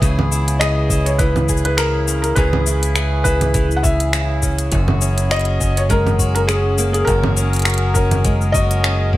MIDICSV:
0, 0, Header, 1, 6, 480
1, 0, Start_track
1, 0, Tempo, 588235
1, 16, Time_signature, 4, 2, 24, 8
1, 7484, End_track
2, 0, Start_track
2, 0, Title_t, "Felt piano"
2, 0, Program_c, 0, 0
2, 486, Note_on_c, 0, 75, 98
2, 863, Note_on_c, 0, 73, 83
2, 876, Note_off_c, 0, 75, 0
2, 966, Note_on_c, 0, 71, 86
2, 975, Note_off_c, 0, 73, 0
2, 1333, Note_off_c, 0, 71, 0
2, 1346, Note_on_c, 0, 71, 88
2, 1447, Note_on_c, 0, 70, 100
2, 1456, Note_off_c, 0, 71, 0
2, 1800, Note_off_c, 0, 70, 0
2, 1812, Note_on_c, 0, 70, 85
2, 1921, Note_on_c, 0, 71, 95
2, 1930, Note_off_c, 0, 70, 0
2, 2632, Note_off_c, 0, 71, 0
2, 2644, Note_on_c, 0, 71, 98
2, 3072, Note_on_c, 0, 78, 77
2, 3092, Note_off_c, 0, 71, 0
2, 3127, Note_on_c, 0, 76, 97
2, 3129, Note_off_c, 0, 78, 0
2, 3579, Note_off_c, 0, 76, 0
2, 4337, Note_on_c, 0, 75, 112
2, 4712, Note_on_c, 0, 73, 99
2, 4722, Note_off_c, 0, 75, 0
2, 4753, Note_off_c, 0, 73, 0
2, 4819, Note_on_c, 0, 70, 101
2, 5167, Note_off_c, 0, 70, 0
2, 5179, Note_on_c, 0, 70, 95
2, 5220, Note_off_c, 0, 70, 0
2, 5283, Note_on_c, 0, 68, 94
2, 5637, Note_off_c, 0, 68, 0
2, 5656, Note_on_c, 0, 68, 89
2, 5751, Note_on_c, 0, 70, 97
2, 5772, Note_off_c, 0, 68, 0
2, 6450, Note_off_c, 0, 70, 0
2, 6480, Note_on_c, 0, 70, 94
2, 6955, Note_on_c, 0, 75, 98
2, 6982, Note_off_c, 0, 70, 0
2, 7413, Note_off_c, 0, 75, 0
2, 7484, End_track
3, 0, Start_track
3, 0, Title_t, "Steel-string acoustic guitar"
3, 0, Program_c, 1, 25
3, 0, Note_on_c, 1, 52, 91
3, 0, Note_on_c, 1, 64, 66
3, 14, Note_on_c, 1, 49, 91
3, 21, Note_on_c, 1, 68, 81
3, 253, Note_off_c, 1, 64, 0
3, 256, Note_on_c, 1, 64, 64
3, 494, Note_off_c, 1, 68, 0
3, 498, Note_on_c, 1, 68, 69
3, 725, Note_off_c, 1, 64, 0
3, 735, Note_on_c, 1, 64, 63
3, 945, Note_off_c, 1, 52, 0
3, 974, Note_on_c, 1, 52, 77
3, 1213, Note_off_c, 1, 68, 0
3, 1216, Note_on_c, 1, 68, 73
3, 1447, Note_off_c, 1, 64, 0
3, 1457, Note_on_c, 1, 64, 65
3, 1697, Note_on_c, 1, 61, 66
3, 1927, Note_off_c, 1, 49, 0
3, 1937, Note_on_c, 1, 49, 88
3, 1939, Note_off_c, 1, 68, 0
3, 1942, Note_on_c, 1, 68, 77
3, 2164, Note_off_c, 1, 64, 0
3, 2174, Note_on_c, 1, 64, 65
3, 2412, Note_off_c, 1, 68, 0
3, 2415, Note_on_c, 1, 68, 71
3, 2644, Note_off_c, 1, 64, 0
3, 2653, Note_on_c, 1, 64, 65
3, 2884, Note_off_c, 1, 52, 0
3, 2893, Note_on_c, 1, 52, 77
3, 3128, Note_off_c, 1, 68, 0
3, 3131, Note_on_c, 1, 68, 64
3, 3362, Note_off_c, 1, 64, 0
3, 3372, Note_on_c, 1, 64, 68
3, 3613, Note_off_c, 1, 61, 0
3, 3616, Note_on_c, 1, 61, 64
3, 3853, Note_on_c, 1, 42, 88
3, 3854, Note_off_c, 1, 68, 0
3, 3856, Note_off_c, 1, 49, 0
3, 3858, Note_on_c, 1, 66, 77
3, 3907, Note_off_c, 1, 64, 0
3, 3908, Note_off_c, 1, 52, 0
3, 4093, Note_off_c, 1, 61, 0
3, 4093, Note_on_c, 1, 61, 65
3, 4327, Note_off_c, 1, 66, 0
3, 4330, Note_on_c, 1, 66, 70
3, 4570, Note_off_c, 1, 61, 0
3, 4573, Note_on_c, 1, 61, 62
3, 4809, Note_on_c, 1, 56, 76
3, 5049, Note_off_c, 1, 66, 0
3, 5052, Note_on_c, 1, 66, 71
3, 5286, Note_off_c, 1, 61, 0
3, 5290, Note_on_c, 1, 61, 63
3, 5534, Note_on_c, 1, 58, 64
3, 5763, Note_off_c, 1, 42, 0
3, 5773, Note_off_c, 1, 66, 0
3, 5773, Note_on_c, 1, 42, 87
3, 5776, Note_on_c, 1, 66, 78
3, 6005, Note_off_c, 1, 61, 0
3, 6008, Note_on_c, 1, 61, 69
3, 6246, Note_off_c, 1, 66, 0
3, 6249, Note_on_c, 1, 66, 73
3, 6489, Note_off_c, 1, 61, 0
3, 6492, Note_on_c, 1, 61, 63
3, 6720, Note_off_c, 1, 56, 0
3, 6729, Note_on_c, 1, 56, 77
3, 6963, Note_off_c, 1, 66, 0
3, 6966, Note_on_c, 1, 66, 74
3, 7205, Note_off_c, 1, 61, 0
3, 7208, Note_on_c, 1, 61, 68
3, 7439, Note_off_c, 1, 58, 0
3, 7449, Note_on_c, 1, 58, 68
3, 7484, Note_off_c, 1, 42, 0
3, 7484, Note_off_c, 1, 56, 0
3, 7484, Note_off_c, 1, 58, 0
3, 7484, Note_off_c, 1, 61, 0
3, 7484, Note_off_c, 1, 66, 0
3, 7484, End_track
4, 0, Start_track
4, 0, Title_t, "Harmonium"
4, 0, Program_c, 2, 20
4, 0, Note_on_c, 2, 59, 90
4, 0, Note_on_c, 2, 64, 104
4, 0, Note_on_c, 2, 68, 65
4, 8, Note_on_c, 2, 49, 88
4, 739, Note_on_c, 2, 61, 72
4, 1048, Note_off_c, 2, 59, 0
4, 3848, Note_on_c, 2, 54, 81
4, 3851, Note_off_c, 2, 49, 0
4, 4461, Note_off_c, 2, 64, 0
4, 5587, Note_on_c, 2, 70, 89
4, 7484, Note_off_c, 2, 54, 0
4, 7484, Note_off_c, 2, 61, 0
4, 7484, Note_off_c, 2, 68, 0
4, 7484, Note_off_c, 2, 70, 0
4, 7484, End_track
5, 0, Start_track
5, 0, Title_t, "Fingered electric bass"
5, 0, Program_c, 3, 33
5, 13, Note_on_c, 3, 37, 97
5, 1904, Note_off_c, 3, 37, 0
5, 1933, Note_on_c, 3, 37, 90
5, 3823, Note_off_c, 3, 37, 0
5, 3853, Note_on_c, 3, 30, 96
5, 5744, Note_off_c, 3, 30, 0
5, 5772, Note_on_c, 3, 30, 100
5, 7484, Note_off_c, 3, 30, 0
5, 7484, End_track
6, 0, Start_track
6, 0, Title_t, "Drums"
6, 14, Note_on_c, 9, 36, 122
6, 20, Note_on_c, 9, 42, 47
6, 24, Note_on_c, 9, 69, 47
6, 96, Note_off_c, 9, 36, 0
6, 102, Note_off_c, 9, 42, 0
6, 105, Note_off_c, 9, 69, 0
6, 153, Note_on_c, 9, 64, 81
6, 234, Note_off_c, 9, 64, 0
6, 261, Note_on_c, 9, 69, 80
6, 343, Note_off_c, 9, 69, 0
6, 391, Note_on_c, 9, 42, 54
6, 394, Note_on_c, 9, 69, 35
6, 472, Note_off_c, 9, 42, 0
6, 476, Note_off_c, 9, 69, 0
6, 497, Note_on_c, 9, 26, 101
6, 497, Note_on_c, 9, 42, 44
6, 500, Note_on_c, 9, 69, 47
6, 578, Note_off_c, 9, 26, 0
6, 578, Note_off_c, 9, 42, 0
6, 582, Note_off_c, 9, 69, 0
6, 735, Note_on_c, 9, 36, 108
6, 738, Note_on_c, 9, 69, 80
6, 816, Note_off_c, 9, 36, 0
6, 820, Note_off_c, 9, 69, 0
6, 868, Note_on_c, 9, 42, 49
6, 871, Note_on_c, 9, 69, 34
6, 950, Note_off_c, 9, 42, 0
6, 953, Note_off_c, 9, 69, 0
6, 972, Note_on_c, 9, 42, 46
6, 975, Note_on_c, 9, 36, 114
6, 976, Note_on_c, 9, 69, 51
6, 1054, Note_off_c, 9, 42, 0
6, 1057, Note_off_c, 9, 36, 0
6, 1057, Note_off_c, 9, 69, 0
6, 1108, Note_on_c, 9, 64, 68
6, 1111, Note_on_c, 9, 69, 30
6, 1190, Note_off_c, 9, 64, 0
6, 1193, Note_off_c, 9, 69, 0
6, 1213, Note_on_c, 9, 69, 83
6, 1215, Note_on_c, 9, 36, 71
6, 1282, Note_off_c, 9, 69, 0
6, 1282, Note_on_c, 9, 69, 35
6, 1296, Note_off_c, 9, 36, 0
6, 1347, Note_on_c, 9, 42, 50
6, 1364, Note_off_c, 9, 69, 0
6, 1428, Note_off_c, 9, 42, 0
6, 1451, Note_on_c, 9, 26, 105
6, 1451, Note_on_c, 9, 42, 44
6, 1454, Note_on_c, 9, 69, 46
6, 1533, Note_off_c, 9, 26, 0
6, 1533, Note_off_c, 9, 42, 0
6, 1536, Note_off_c, 9, 69, 0
6, 1697, Note_on_c, 9, 69, 81
6, 1778, Note_off_c, 9, 69, 0
6, 1826, Note_on_c, 9, 42, 50
6, 1829, Note_on_c, 9, 69, 32
6, 1908, Note_off_c, 9, 42, 0
6, 1911, Note_off_c, 9, 69, 0
6, 1929, Note_on_c, 9, 42, 43
6, 1932, Note_on_c, 9, 69, 47
6, 1934, Note_on_c, 9, 36, 119
6, 2011, Note_off_c, 9, 42, 0
6, 2014, Note_off_c, 9, 69, 0
6, 2016, Note_off_c, 9, 36, 0
6, 2065, Note_on_c, 9, 64, 81
6, 2146, Note_off_c, 9, 64, 0
6, 2175, Note_on_c, 9, 69, 83
6, 2257, Note_off_c, 9, 69, 0
6, 2307, Note_on_c, 9, 42, 55
6, 2311, Note_on_c, 9, 69, 34
6, 2389, Note_off_c, 9, 42, 0
6, 2392, Note_off_c, 9, 69, 0
6, 2412, Note_on_c, 9, 26, 99
6, 2412, Note_on_c, 9, 42, 41
6, 2415, Note_on_c, 9, 69, 50
6, 2493, Note_off_c, 9, 26, 0
6, 2493, Note_off_c, 9, 42, 0
6, 2496, Note_off_c, 9, 69, 0
6, 2653, Note_on_c, 9, 36, 102
6, 2655, Note_on_c, 9, 69, 78
6, 2735, Note_off_c, 9, 36, 0
6, 2736, Note_off_c, 9, 69, 0
6, 2784, Note_on_c, 9, 42, 47
6, 2784, Note_on_c, 9, 64, 55
6, 2787, Note_on_c, 9, 69, 32
6, 2866, Note_off_c, 9, 42, 0
6, 2866, Note_off_c, 9, 64, 0
6, 2869, Note_off_c, 9, 69, 0
6, 2890, Note_on_c, 9, 42, 44
6, 2893, Note_on_c, 9, 36, 117
6, 2893, Note_on_c, 9, 69, 52
6, 2972, Note_off_c, 9, 42, 0
6, 2975, Note_off_c, 9, 36, 0
6, 2975, Note_off_c, 9, 69, 0
6, 3028, Note_on_c, 9, 69, 29
6, 3109, Note_off_c, 9, 69, 0
6, 3133, Note_on_c, 9, 36, 111
6, 3135, Note_on_c, 9, 69, 80
6, 3215, Note_off_c, 9, 36, 0
6, 3217, Note_off_c, 9, 69, 0
6, 3265, Note_on_c, 9, 42, 53
6, 3269, Note_on_c, 9, 69, 33
6, 3347, Note_off_c, 9, 42, 0
6, 3350, Note_off_c, 9, 69, 0
6, 3371, Note_on_c, 9, 26, 92
6, 3371, Note_on_c, 9, 42, 42
6, 3375, Note_on_c, 9, 69, 44
6, 3453, Note_off_c, 9, 26, 0
6, 3453, Note_off_c, 9, 42, 0
6, 3456, Note_off_c, 9, 69, 0
6, 3612, Note_on_c, 9, 36, 60
6, 3612, Note_on_c, 9, 69, 84
6, 3693, Note_off_c, 9, 69, 0
6, 3694, Note_off_c, 9, 36, 0
6, 3742, Note_on_c, 9, 42, 49
6, 3745, Note_on_c, 9, 69, 32
6, 3823, Note_off_c, 9, 42, 0
6, 3826, Note_off_c, 9, 69, 0
6, 3848, Note_on_c, 9, 42, 45
6, 3852, Note_on_c, 9, 69, 45
6, 3853, Note_on_c, 9, 36, 117
6, 3930, Note_off_c, 9, 42, 0
6, 3933, Note_off_c, 9, 69, 0
6, 3934, Note_off_c, 9, 36, 0
6, 3981, Note_on_c, 9, 64, 75
6, 4063, Note_off_c, 9, 64, 0
6, 4091, Note_on_c, 9, 69, 72
6, 4172, Note_off_c, 9, 69, 0
6, 4224, Note_on_c, 9, 42, 53
6, 4228, Note_on_c, 9, 69, 33
6, 4306, Note_off_c, 9, 42, 0
6, 4309, Note_off_c, 9, 69, 0
6, 4333, Note_on_c, 9, 26, 97
6, 4333, Note_on_c, 9, 42, 21
6, 4337, Note_on_c, 9, 69, 44
6, 4357, Note_off_c, 9, 42, 0
6, 4357, Note_on_c, 9, 42, 22
6, 4377, Note_off_c, 9, 42, 0
6, 4377, Note_on_c, 9, 42, 25
6, 4401, Note_off_c, 9, 42, 0
6, 4401, Note_on_c, 9, 42, 31
6, 4413, Note_off_c, 9, 42, 0
6, 4413, Note_on_c, 9, 42, 35
6, 4415, Note_off_c, 9, 26, 0
6, 4418, Note_off_c, 9, 69, 0
6, 4448, Note_off_c, 9, 42, 0
6, 4448, Note_on_c, 9, 42, 37
6, 4530, Note_off_c, 9, 42, 0
6, 4573, Note_on_c, 9, 36, 100
6, 4578, Note_on_c, 9, 69, 79
6, 4655, Note_off_c, 9, 36, 0
6, 4660, Note_off_c, 9, 69, 0
6, 4710, Note_on_c, 9, 42, 50
6, 4714, Note_on_c, 9, 69, 30
6, 4792, Note_off_c, 9, 42, 0
6, 4795, Note_off_c, 9, 69, 0
6, 4813, Note_on_c, 9, 36, 113
6, 4814, Note_on_c, 9, 42, 47
6, 4818, Note_on_c, 9, 69, 47
6, 4895, Note_off_c, 9, 36, 0
6, 4896, Note_off_c, 9, 42, 0
6, 4899, Note_off_c, 9, 69, 0
6, 4950, Note_on_c, 9, 64, 68
6, 4953, Note_on_c, 9, 69, 26
6, 5031, Note_off_c, 9, 64, 0
6, 5034, Note_off_c, 9, 69, 0
6, 5053, Note_on_c, 9, 36, 64
6, 5056, Note_on_c, 9, 69, 83
6, 5134, Note_off_c, 9, 36, 0
6, 5137, Note_off_c, 9, 69, 0
6, 5186, Note_on_c, 9, 42, 51
6, 5190, Note_on_c, 9, 69, 32
6, 5268, Note_off_c, 9, 42, 0
6, 5271, Note_off_c, 9, 69, 0
6, 5293, Note_on_c, 9, 26, 88
6, 5293, Note_on_c, 9, 42, 44
6, 5296, Note_on_c, 9, 69, 45
6, 5374, Note_off_c, 9, 26, 0
6, 5374, Note_off_c, 9, 42, 0
6, 5378, Note_off_c, 9, 69, 0
6, 5534, Note_on_c, 9, 69, 77
6, 5616, Note_off_c, 9, 69, 0
6, 5666, Note_on_c, 9, 42, 49
6, 5670, Note_on_c, 9, 69, 33
6, 5748, Note_off_c, 9, 42, 0
6, 5751, Note_off_c, 9, 69, 0
6, 5773, Note_on_c, 9, 36, 107
6, 5773, Note_on_c, 9, 42, 41
6, 5776, Note_on_c, 9, 69, 42
6, 5854, Note_off_c, 9, 36, 0
6, 5855, Note_off_c, 9, 42, 0
6, 5858, Note_off_c, 9, 69, 0
6, 5904, Note_on_c, 9, 64, 88
6, 5985, Note_off_c, 9, 64, 0
6, 6013, Note_on_c, 9, 69, 74
6, 6095, Note_off_c, 9, 69, 0
6, 6147, Note_on_c, 9, 42, 24
6, 6150, Note_on_c, 9, 69, 31
6, 6172, Note_off_c, 9, 42, 0
6, 6172, Note_on_c, 9, 42, 26
6, 6196, Note_off_c, 9, 42, 0
6, 6196, Note_on_c, 9, 42, 32
6, 6218, Note_off_c, 9, 42, 0
6, 6218, Note_on_c, 9, 42, 33
6, 6232, Note_off_c, 9, 69, 0
6, 6245, Note_off_c, 9, 42, 0
6, 6245, Note_on_c, 9, 26, 100
6, 6245, Note_on_c, 9, 42, 43
6, 6249, Note_on_c, 9, 69, 43
6, 6281, Note_off_c, 9, 42, 0
6, 6281, Note_on_c, 9, 42, 42
6, 6314, Note_off_c, 9, 42, 0
6, 6314, Note_on_c, 9, 42, 45
6, 6327, Note_off_c, 9, 26, 0
6, 6330, Note_off_c, 9, 69, 0
6, 6346, Note_off_c, 9, 42, 0
6, 6346, Note_on_c, 9, 42, 48
6, 6428, Note_off_c, 9, 42, 0
6, 6489, Note_on_c, 9, 69, 75
6, 6491, Note_on_c, 9, 36, 96
6, 6571, Note_off_c, 9, 69, 0
6, 6573, Note_off_c, 9, 36, 0
6, 6621, Note_on_c, 9, 42, 56
6, 6621, Note_on_c, 9, 64, 63
6, 6624, Note_on_c, 9, 69, 34
6, 6703, Note_off_c, 9, 42, 0
6, 6703, Note_off_c, 9, 64, 0
6, 6706, Note_off_c, 9, 69, 0
6, 6728, Note_on_c, 9, 42, 48
6, 6732, Note_on_c, 9, 36, 114
6, 6732, Note_on_c, 9, 69, 46
6, 6810, Note_off_c, 9, 42, 0
6, 6813, Note_off_c, 9, 36, 0
6, 6813, Note_off_c, 9, 69, 0
6, 6866, Note_on_c, 9, 69, 29
6, 6947, Note_off_c, 9, 69, 0
6, 6972, Note_on_c, 9, 36, 113
6, 6975, Note_on_c, 9, 69, 81
6, 7054, Note_off_c, 9, 36, 0
6, 7056, Note_off_c, 9, 69, 0
6, 7106, Note_on_c, 9, 42, 51
6, 7109, Note_on_c, 9, 69, 33
6, 7187, Note_off_c, 9, 42, 0
6, 7191, Note_off_c, 9, 69, 0
6, 7215, Note_on_c, 9, 26, 95
6, 7215, Note_on_c, 9, 42, 45
6, 7218, Note_on_c, 9, 69, 42
6, 7296, Note_off_c, 9, 26, 0
6, 7296, Note_off_c, 9, 42, 0
6, 7299, Note_off_c, 9, 69, 0
6, 7451, Note_on_c, 9, 36, 57
6, 7484, Note_off_c, 9, 36, 0
6, 7484, End_track
0, 0, End_of_file